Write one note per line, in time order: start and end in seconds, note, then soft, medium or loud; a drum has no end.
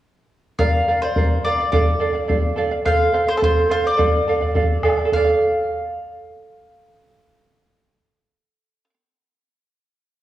0.58 0.86 A#4 medium
0.58 0.87 D5 medium
0.58 0.99 F5 medium
0.58 0.87 F5 medium
0.58 bombo low medium
0.88 1.02 A#4 soft
0.88 1.02 D5 medium
0.88 1.01 F5 medium
1.02 1.44 C5 medium
1.02 1.15 D5 soft
1.02 1.16 F5 soft
1.16 1.44 A#4 soft
1.16 1.44 D5 soft
1.16 1.45 F5 medium
1.16 bombo low medium
1.44 1.59 A#4 medium
1.44 1.71 D5 medium
1.44 1.59 D5 medium
1.44 1.57 F5 medium
1.58 1.71 D5 soft
1.58 1.72 F5 medium
1.72 1.98 A4 medium
1.72 2.54 D5 medium
1.72 1.99 D5 medium
1.72 2.00 F5 medium
1.72 bombo low medium
2.00 2.15 A4 soft
2.00 2.13 D5 medium
2.00 2.12 F5 medium
2.13 2.27 D5 soft
2.13 2.28 F5 soft
2.28 2.55 A4 soft
2.28 2.56 D5 soft
2.28 2.57 F5 medium
2.28 bombo low medium
2.56 2.71 A4 medium
2.56 2.71 D5 medium
2.56 2.70 F5 medium
2.71 2.84 D5 soft
2.71 2.85 F5 soft
2.85 3.11 A4 medium
2.85 3.12 C5 medium
2.85 3.30 F5 medium
2.85 3.13 F5 medium
2.85 bombo low medium
3.12 3.28 A4 soft
3.12 3.26 C5 medium
3.12 3.26 F5 medium
3.27 3.40 C5 soft
3.27 3.36 C5 medium
3.27 3.41 F5 soft
3.37 3.43 A4 medium
3.37 3.68 A4 soft
3.41 3.69 C5 medium
3.41 3.70 C5 medium
3.41 3.70 F5 medium
3.41 bombo low medium
3.69 3.84 A4 medium
3.69 3.83 C5 medium
3.69 3.84 C5 medium
3.69 3.82 F5 medium
3.83 4.00 C5 soft
3.83 4.81 D5 medium
3.83 3.97 F5 soft
3.97 4.26 A4 medium
3.97 4.27 D5 medium
3.97 4.27 F5 medium
3.97 bombo low medium
4.28 4.42 A4 medium
4.28 4.41 D5 soft
4.28 4.40 F5 medium
4.41 4.54 D5 soft
4.41 4.55 F5 soft
4.41 bombo low soft
4.55 4.82 A4 medium
4.55 4.83 D5 medium
4.55 4.84 F5 medium
4.55 bombo low medium
4.84 4.98 A4 medium
4.84 4.97 D5 medium
4.84 4.96 F5 medium
4.84 bombo rim soft
4.84 bombo low soft
4.97 5.13 D5 soft
4.97 5.12 F5 medium
5.05 8.84 A4 medium
5.12 8.89 D5 medium
5.12 8.84 F5 medium
5.12 bombo low medium
5.24 8.93 F5 medium